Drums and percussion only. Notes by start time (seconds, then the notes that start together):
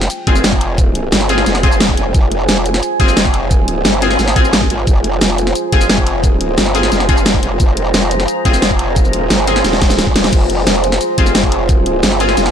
0.01 snare
0.10 closed hi-hat, shaker
0.27 kick, closed hi-hat
0.36 snare, shaker
0.44 snare, closed hi-hat, shaker
0.53 kick, snare
0.61 closed hi-hat
0.78 kick, closed hi-hat, shaker
0.95 closed hi-hat
1.12 snare, closed hi-hat, shaker
1.21 snare
1.29 closed hi-hat, shaker
1.38 snare
1.46 snare, closed hi-hat, shaker
1.55 snare
1.63 kick, closed hi-hat
1.72 shaker
1.80 snare, closed hi-hat, shaker
1.89 kick
1.97 closed hi-hat
2.14 kick, closed hi-hat, shaker
2.32 closed hi-hat
2.49 snare, closed hi-hat, shaker
2.57 snare
2.66 closed hi-hat, shaker
2.74 snare
2.83 closed hi-hat, shaker
3.00 kick, closed hi-hat
3.08 snare, shaker
3.17 snare, closed hi-hat, shaker
3.25 kick, snare
3.34 closed hi-hat
3.51 kick, closed hi-hat, shaker
3.68 closed hi-hat
3.85 snare, closed hi-hat, shaker
3.93 snare
4.02 closed hi-hat, shaker
4.11 snare
4.19 snare, closed hi-hat, shaker
4.28 snare
4.36 kick, closed hi-hat
4.45 shaker
4.53 snare, closed hi-hat, shaker
4.62 kick
4.70 closed hi-hat
4.87 kick, closed hi-hat, shaker
5.04 closed hi-hat
5.21 snare, closed hi-hat, shaker
5.30 snare
5.38 closed hi-hat, shaker
5.47 snare
5.55 closed hi-hat, shaker
5.72 kick, closed hi-hat
5.81 snare, shaker
5.90 snare, closed hi-hat, shaker
5.98 kick, snare
6.07 closed hi-hat
6.24 kick, closed hi-hat, shaker
6.41 closed hi-hat
6.58 snare, closed hi-hat, shaker
6.66 snare
6.75 closed hi-hat, shaker
6.83 snare
6.92 snare, closed hi-hat, shaker
7.00 snare
7.09 kick, closed hi-hat
7.17 shaker
7.26 snare, closed hi-hat, shaker
7.34 kick
7.43 closed hi-hat
7.60 kick, closed hi-hat, shaker
7.77 closed hi-hat
7.94 snare, closed hi-hat, shaker
8.03 snare
8.11 closed hi-hat, shaker
8.20 snare
8.28 closed hi-hat, shaker
8.45 kick, closed hi-hat
8.54 snare, shaker
8.62 snare, closed hi-hat, shaker
8.71 kick, snare
8.79 closed hi-hat
8.96 kick, closed hi-hat, shaker
9.05 shaker
9.13 closed hi-hat
9.30 snare, closed hi-hat, shaker
9.39 snare
9.47 closed hi-hat, shaker
9.56 snare
9.65 snare, closed hi-hat, shaker
9.73 snare
9.82 kick, snare, closed hi-hat, shaker
9.90 snare, shaker
9.99 snare, closed hi-hat, shaker
10.07 kick
10.16 snare, closed hi-hat, shaker
10.24 snare
10.33 kick, closed hi-hat, crash, shaker
10.50 closed hi-hat
10.67 snare, closed hi-hat, shaker
10.75 snare
10.84 closed hi-hat, shaker
10.92 snare
11.01 closed hi-hat, shaker
11.18 kick, closed hi-hat
11.26 snare, shaker
11.35 snare, closed hi-hat, shaker
11.43 kick, snare
11.52 closed hi-hat
11.69 kick, closed hi-hat, shaker
11.86 closed hi-hat
12.03 snare, closed hi-hat, shaker
12.12 snare
12.20 closed hi-hat, shaker
12.29 snare
12.37 snare, closed hi-hat, shaker
12.46 snare